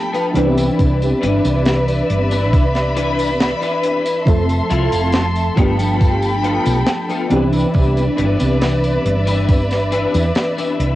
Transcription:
Already playing: F3 A3 B3 D4 G4 A4 G5 B5
0.13 B3 F4 B4, closed hi-hat, tambourine
0.34 C2 E3 B3 C4 D4 E4 G4 B4 D5 E5, closed hi-hat
0.58 closed hi-hat, tambourine
0.79 C2, kick, closed hi-hat, tambourine
1.02 closed hi-hat, tambourine
1.22 G1 D4 E4 B4, closed hi-hat
1.45 C2, closed hi-hat, tambourine
1.65 snare, closed hi-hat, tambourine
1.88 closed hi-hat, tambourine
2.09 G1 B5, closed hi-hat
2.31 D4 E4 B4, closed hi-hat, tambourine
2.53 C2, kick, closed hi-hat, tambourine
2.75 snare, closed hi-hat, tambourine
2.96 D4 E4 B4, closed hi-hat
3.19 closed hi-hat, tambourine
3.40 snare, closed hi-hat, tambourine
3.61 D4 E4 B4, closed hi-hat, tambourine
3.83 closed hi-hat
4.06 closed hi-hat, tambourine
4.25 F1 F3 A3 C4 A4 E5 C6, kick, closed hi-hat, tambourine
4.49 closed hi-hat, tambourine
4.70 C2 E4 F4 A4, closed hi-hat
4.92 F1, closed hi-hat, tambourine
5.13 snare, closed hi-hat, tambourine
5.36 closed hi-hat, tambourine
5.56 G1 F3 A3 B3 D4 F4 G4 A4 G5 B5, kick, closed hi-hat
5.79 closed hi-hat, tambourine
6.01 kick, closed hi-hat, tambourine
6.22 closed hi-hat, tambourine
6.44 B3 F4 A4, closed hi-hat
6.66 B1, closed hi-hat, tambourine
6.87 snare, closed hi-hat, tambourine
7.09 B3 F4 A4, closed hi-hat, tambourine
7.30 C2 E3 B3 C4 D4 E4 G4 B4 D5 E5, closed hi-hat
7.53 closed hi-hat, tambourine
7.74 C2, kick, closed hi-hat, tambourine
7.97 closed hi-hat, tambourine
8.17 G1 D4 E4 B4, closed hi-hat
8.40 C2, closed hi-hat, tambourine
8.61 snare, closed hi-hat, tambourine
8.84 closed hi-hat, tambourine
9.05 G1, closed hi-hat
9.27 D4 E4 B4, closed hi-hat, tambourine
9.48 kick, closed hi-hat, tambourine
9.71 snare, closed hi-hat, tambourine
9.92 D4 E4 B4, closed hi-hat
10.14 E2, closed hi-hat, tambourine
10.35 snare, closed hi-hat, tambourine
10.58 D4 E4 B4, closed hi-hat, tambourine
10.79 C2, closed hi-hat

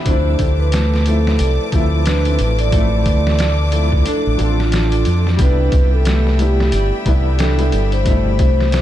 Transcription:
0.03 D2 F3 A3 D4 A4 C5 A5 D6, kick, closed hi-hat
0.08 C4 E4
0.39 D2, kick, closed hi-hat
0.60 B4
0.72 A3, snare, closed hi-hat
0.94 snare
1.05 F3 A3 C4 E4 A4, closed hi-hat
1.27 snare
1.39 C2 D5, closed hi-hat
1.72 D2 F3 A3 C4 E4, kick, closed hi-hat
2.06 D4 B4, snare, closed hi-hat
2.25 F3 A3 C4 E4, closed hi-hat
2.39 A1, closed hi-hat
2.59 D5, closed hi-hat
2.70 F3 A3, kick, closed hi-hat
2.75 C4 E4
3.06 D2 D5, kick, closed hi-hat
3.27 snare
3.39 D5, snare, closed hi-hat
3.72 F3 A3 C4 E4, closed hi-hat
3.92 kick
4.06 D4 A4, closed hi-hat
4.27 A1
4.37 A1 F3 A3 D4, closed hi-hat
4.42 C4 F4
4.60 F4, snare
4.72 D4, snare, closed hi-hat
4.92 closed hi-hat
5.05 F2, closed hi-hat
5.27 snare
5.37 C2 G3 B3 D4 G4 B4 E5 G5 B5, kick, closed hi-hat
5.42 D4 E4
5.72 C2, kick, closed hi-hat
5.93 A4
6.05 A3, snare, closed hi-hat
6.27 snare
6.38 G3 B3 D4 E4 G4, closed hi-hat
6.60 snare
6.72 G1 D5, closed hi-hat
7.05 C2 G3 B3 D4 E4, kick, closed hi-hat
7.39 D4 A4, snare, closed hi-hat
7.58 G3 B3 D4 E4, closed hi-hat
7.72 G1, closed hi-hat
7.92 C5, closed hi-hat
8.03 B2 G3 A3, kick, closed hi-hat
8.08 D4 E4
8.39 C2 C5, kick, closed hi-hat
8.61 snare
8.72 D5, snare, closed hi-hat

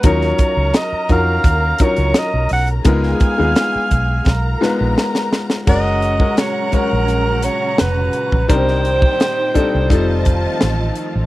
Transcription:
0.03 D#2 F#3 C#4 D#4 F4 A#4 C#5 A#5, kick, closed hi-hat
0.21 snare
0.38 kick, closed hi-hat
0.57 C#2
0.74 D#5, snare, closed hi-hat
0.93 muted fingered electric bass stroke
1.09 F2 C#4 D#4 F4 F#4 A#4 F5, kick, closed hi-hat
1.44 D#2, kick, closed hi-hat
1.78 F#3 C#4 D#4 F4 A#4, kick, closed hi-hat
1.83 C#5
1.97 C#2, closed hi-hat
2.14 snare, closed hi-hat
2.18 D#5
2.34 B1
2.49 B1, open hi-hat
2.53 F#5
2.67 closed hi-hat
2.85 C#2 G#3 B3 D#4 F4 G#4 A#4 F5 G#5, kick, closed hi-hat
3.03 snare
3.20 kick, closed hi-hat
3.38 D#2 G#3 B3 D#4 F4 G#4
3.56 snare, closed hi-hat
3.75 muted fingered electric bass stroke
3.91 B1, kick, closed hi-hat
4.26 B1 A#4 A#5, kick, snare
4.61 G#3 B3 D#4 F4 B4, snare
4.81 A#1
4.98 snare
5.15 snare
5.33 snare
5.50 snare
5.67 F#1 A#2 C#3 F#3 G#3 C#4 F#4 A#4 D#5 F#5 A#5, kick, crash
6.02 closed hi-hat
6.20 G#3 C#4 F#4 A#4, kick
6.37 C#5, snare, closed hi-hat
6.72 G#3 C#4 F#4 A#4 C#5, muted fingered electric bass stroke, kick, closed hi-hat
6.93 A#1
7.08 closed hi-hat
7.42 C#5, closed hi-hat
7.78 F1 B4, snare, closed hi-hat
8.13 closed hi-hat
8.32 A#1, kick
8.48 C2 D#3 G3 C4 D4 D#4 G4 A#4 C5 G5, kick, closed hi-hat
8.68 snare
8.85 closed hi-hat
9.02 kick
9.20 snare, closed hi-hat
9.54 G3 C4 D4 D#4 A4, muted fingered electric bass stroke, kick, closed hi-hat
9.75 C2
9.89 F1 D#3 F3 G3 A3 C4 D#4 F4 A4 D#5 A5, kick, closed hi-hat
10.25 kick, closed hi-hat
10.61 A1, snare, closed hi-hat
10.95 closed hi-hat
11.16 A1

